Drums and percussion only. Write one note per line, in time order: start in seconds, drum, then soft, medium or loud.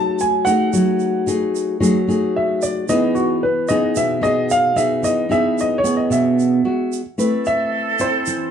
0.19 shaker medium
0.46 shaker medium
0.73 shaker medium
1.00 shaker soft
1.28 shaker medium
1.55 shaker medium
1.83 shaker medium
2.10 shaker soft
2.62 shaker medium
2.89 shaker medium
3.16 shaker soft
3.69 shaker medium
3.96 shaker medium
4.24 shaker soft
4.50 shaker medium
4.77 shaker medium
5.04 shaker medium
5.31 shaker soft
5.59 shaker soft
5.85 shaker medium
6.12 shaker medium
6.39 shaker soft
6.93 shaker medium
7.19 shaker medium
7.45 shaker soft
7.99 shaker medium
8.26 shaker medium